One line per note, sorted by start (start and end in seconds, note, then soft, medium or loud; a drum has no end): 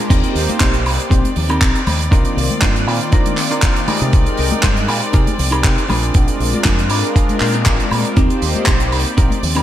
0.10 0.21 D#2 medium
0.10 0.83 A#3 medium
0.10 0.35 C4 loud
0.10 8.16 C4 medium
0.10 0.35 D#4 loud
0.10 0.83 D#4 medium
0.10 0.35 G4 loud
0.10 0.84 G4 medium
0.10 0.36 A#4 loud
0.10 0.84 C5 loud
0.10 8.16 D5 medium
0.10 kick loud
0.10 closed hi-hat loud
0.10 crash medium
0.24 closed hi-hat medium
0.35 0.46 D#2 medium
0.35 open hi-hat loud
0.49 muted fingered electric bass stroke soft
0.49 closed hi-hat medium
0.49 high conga medium
0.60 0.86 A#1 medium
0.60 0.74 C4 medium
0.60 0.74 D#4 medium
0.60 0.74 G4 medium
0.60 0.74 C5 loud
0.60 kick loud
0.60 clap loud
0.60 closed hi-hat medium
0.74 closed hi-hat medium
0.85 0.97 C2 loud
0.85 0.94 A#3 medium
0.85 0.94 D#4 medium
0.85 0.94 G4 medium
0.85 0.94 C5 loud
0.85 muted clean electric guitar stroke soft
0.85 open hi-hat loud
0.85 high woodblock medium
1.00 closed hi-hat medium
1.10 1.22 A#1 loud
1.10 1.30 C4 medium
1.10 1.30 D#4 medium
1.10 1.30 G4 medium
1.10 1.30 C5 medium
1.10 kick loud
1.10 closed hi-hat loud
1.24 closed hi-hat medium
1.24 high conga medium
1.36 1.58 D#2 medium
1.36 open hi-hat loud
1.36 low conga medium
1.49 1.80 C4 medium
1.49 1.81 D#4 medium
1.49 1.81 G4 medium
1.49 1.81 A#4 loud
1.49 closed hi-hat medium
1.49 high woodblock medium
1.61 1.73 A#1 medium
1.61 kick loud
1.61 clap loud
1.61 closed hi-hat loud
1.75 closed hi-hat medium
1.87 2.08 D#2 medium
1.87 open hi-hat loud
1.87 high conga medium
1.87 low conga medium
1.87 high woodblock medium
2.01 closed hi-hat medium
2.11 2.23 C2 loud
2.11 2.85 D#3 medium
2.11 2.84 A#3 medium
2.11 2.37 D4 loud
2.11 2.37 D#4 loud
2.11 2.37 F4 loud
2.11 2.85 F4 medium
2.11 2.37 A#4 loud
2.11 2.85 D5 medium
2.11 kick loud
2.11 closed hi-hat medium
2.25 closed hi-hat medium
2.37 2.48 C2 medium
2.37 open hi-hat loud
2.50 muted fingered electric bass stroke soft
2.50 closed hi-hat medium
2.50 high conga loud
2.62 2.87 G2 medium
2.62 2.75 D4 medium
2.62 2.75 D#4 medium
2.62 2.76 F4 medium
2.62 2.76 C5 medium
2.62 kick loud
2.62 clap loud
2.62 closed hi-hat medium
2.76 closed hi-hat medium
2.87 2.98 A#2 loud
2.87 3.86 D#3 medium
2.87 3.86 A#3 medium
2.87 3.86 F4 medium
2.87 3.87 D5 loud
2.87 muted clean electric guitar stroke soft
2.87 open hi-hat loud
2.87 high woodblock medium
3.01 closed hi-hat medium
3.12 3.32 D4 medium
3.12 3.32 D#4 medium
3.12 3.32 F4 medium
3.12 3.32 A#4 loud
3.12 kick loud
3.12 closed hi-hat medium
3.26 closed hi-hat medium
3.26 high conga medium
3.37 clap medium
3.37 open hi-hat loud
3.50 3.82 D4 medium
3.50 3.82 D#4 medium
3.50 3.82 F4 medium
3.50 3.83 A#4 loud
3.50 closed hi-hat medium
3.62 kick loud
3.62 clap loud
3.62 closed hi-hat medium
3.76 closed hi-hat medium
3.88 4.10 G#3 medium
3.88 4.49 D#4 medium
3.88 4.10 D#4 medium
3.88 4.49 G4 medium
3.88 4.11 G4 medium
3.88 4.49 G#4 medium
3.88 4.11 A#4 medium
3.88 4.50 A#4 loud
3.88 muted fingered electric bass stroke soft
3.88 open hi-hat loud
3.88 high conga loud
3.88 high woodblock medium
4.01 4.12 C3 loud
4.01 closed hi-hat medium
4.12 4.25 C2 loud
4.12 4.85 G#3 medium
4.12 4.86 D#4 medium
4.12 4.86 A#4 loud
4.12 4.86 G5 medium
4.12 kick loud
4.12 closed hi-hat medium
4.26 closed hi-hat medium
4.37 4.50 C2 medium
4.37 open hi-hat loud
4.51 closed hi-hat medium
4.51 high conga loud
4.63 4.89 G2 medium
4.63 4.77 D#4 medium
4.63 4.77 G4 medium
4.63 4.77 G#4 medium
4.63 4.77 C5 loud
4.63 kick loud
4.63 clap loud
4.63 closed hi-hat loud
4.77 closed hi-hat medium
4.88 5.00 A#2 loud
4.88 4.97 G#3 medium
4.88 4.97 D#4 medium
4.88 4.97 G4 medium
4.88 4.97 A#4 loud
4.88 muted clean electric guitar stroke soft
4.88 open hi-hat loud
4.88 high woodblock medium
5.02 closed hi-hat medium
5.13 5.25 C3 loud
5.13 5.33 D#4 medium
5.13 5.33 G4 medium
5.13 5.33 G#4 medium
5.13 5.34 A#4 loud
5.13 kick loud
5.13 closed hi-hat loud
5.27 closed hi-hat medium
5.27 high conga medium
5.39 5.61 C2 loud
5.39 open hi-hat loud
5.39 low conga medium
5.51 5.83 D#4 medium
5.51 5.83 G4 medium
5.51 5.84 G#4 medium
5.51 5.84 A#4 loud
5.51 closed hi-hat medium
5.51 high woodblock medium
5.64 5.76 C3 medium
5.64 kick loud
5.64 clap loud
5.64 closed hi-hat medium
5.78 closed hi-hat medium
5.88 6.11 A#1 medium
5.88 6.50 D4 medium
5.88 6.50 F4 medium
5.88 6.51 G#4 medium
5.88 6.51 A#4 loud
5.88 open hi-hat loud
5.88 high conga loud
5.88 low conga medium
5.88 high woodblock medium
6.03 closed hi-hat medium
6.14 6.26 A#1 loud
6.14 6.87 G#3 medium
6.14 6.88 D4 medium
6.14 6.88 F4 medium
6.14 6.88 A#4 medium
6.14 kick loud
6.14 closed hi-hat loud
6.28 closed hi-hat medium
6.40 6.51 A#1 medium
6.40 open hi-hat loud
6.53 closed hi-hat medium
6.53 high conga loud
6.64 6.91 F2 medium
6.64 6.79 D4 medium
6.64 6.79 F4 medium
6.64 6.79 G#4 medium
6.64 6.79 A#4 loud
6.64 kick loud
6.64 clap loud
6.64 closed hi-hat loud
6.79 closed hi-hat medium
6.89 7.02 G#2 loud
6.89 7.89 G#3 loud
6.89 7.89 D4 medium
6.89 7.89 F4 medium
6.89 7.90 A#4 loud
6.89 7.14 D5 medium
6.89 muted clean electric guitar stroke soft
6.89 open hi-hat loud
6.89 high woodblock medium
7.04 closed hi-hat medium
7.15 7.35 D4 medium
7.15 7.35 F4 medium
7.15 7.35 G#4 medium
7.15 7.35 A#4 loud
7.15 7.63 F5 medium
7.15 kick loud
7.15 closed hi-hat medium
7.29 closed hi-hat medium
7.29 high conga medium
7.40 7.68 A#2 medium
7.40 clap medium
7.40 open hi-hat loud
7.53 7.85 D4 medium
7.53 7.86 F4 medium
7.53 7.86 G#4 medium
7.53 7.86 A#4 medium
7.53 closed hi-hat medium
7.66 7.78 G#1 medium
7.66 8.13 A#5 medium
7.66 kick loud
7.66 clap loud
7.66 closed hi-hat medium
7.80 closed hi-hat medium
7.91 8.03 A#2 medium
7.91 8.14 G#3 medium
7.91 8.14 D4 medium
7.91 8.14 F4 medium
7.91 8.14 A#4 medium
7.91 open hi-hat loud
7.91 high conga loud
7.91 high woodblock medium
8.05 closed hi-hat medium
8.16 8.28 D#2 loud
8.16 8.89 A#3 medium
8.16 8.42 C4 loud
8.16 9.63 C4 medium
8.16 8.42 D#4 loud
8.16 8.90 D#4 medium
8.16 8.42 G4 loud
8.16 8.90 G4 medium
8.16 8.42 A#4 loud
8.16 8.90 C5 loud
8.16 9.63 D5 medium
8.16 kick loud
8.16 closed hi-hat medium
8.30 closed hi-hat medium
8.42 8.53 D#2 medium
8.42 open hi-hat loud
8.55 muted fingered electric bass stroke soft
8.55 closed hi-hat soft
8.55 high conga medium
8.66 8.92 A#1 medium
8.66 8.80 C4 medium
8.66 8.80 D#4 medium
8.66 8.81 G4 medium
8.66 8.81 C5 loud
8.66 kick loud
8.66 clap loud
8.66 closed hi-hat loud
8.80 closed hi-hat medium
8.92 9.04 C2 loud
8.92 9.00 A#3 medium
8.92 9.00 D#4 medium
8.92 9.01 G4 medium
8.92 9.01 C5 loud
8.92 muted clean electric guitar stroke soft
8.92 open hi-hat loud
8.92 high woodblock medium
9.06 closed hi-hat medium
9.17 9.29 A#1 loud
9.17 9.37 C4 medium
9.17 9.37 D#4 medium
9.17 9.37 G4 medium
9.17 9.37 A#4 loud
9.17 kick loud
9.17 closed hi-hat medium
9.30 closed hi-hat medium
9.30 high conga medium
9.43 9.63 D#2 medium
9.43 open hi-hat loud
9.43 low conga medium
9.55 9.63 C4 medium
9.55 9.63 D#4 medium
9.55 9.63 G4 medium
9.55 9.63 A#4 medium
9.55 closed hi-hat medium
9.55 high woodblock medium